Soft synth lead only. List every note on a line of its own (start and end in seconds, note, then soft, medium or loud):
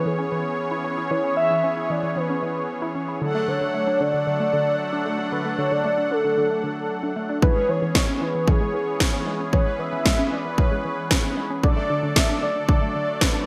0.06 0.85 G#4 medium
1.11 1.35 C#5 loud
1.37 1.91 E5 loud
1.90 2.18 D5 medium
2.16 2.95 B4 medium
3.22 3.49 A4 medium
3.48 4.02 C#5 loud
4.00 4.26 D5 loud
4.27 5.02 D5 loud
5.32 5.57 B4 loud
5.58 5.73 C#5 loud
5.71 6.13 D5 loud
6.11 7.16 A4 medium
7.42 7.70 B4 loud
7.69 8.23 C#5 loud
8.21 8.49 B4 medium
8.48 9.27 G#4 medium
9.53 9.81 C#5 loud
9.79 10.33 E5 loud
10.32 10.58 D5 medium
10.58 11.33 C#5 medium
11.64 12.18 D5 loud
12.16 12.42 E5 loud
12.43 12.67 D5 loud
12.69 13.23 D5 loud
13.22 13.46 B4 medium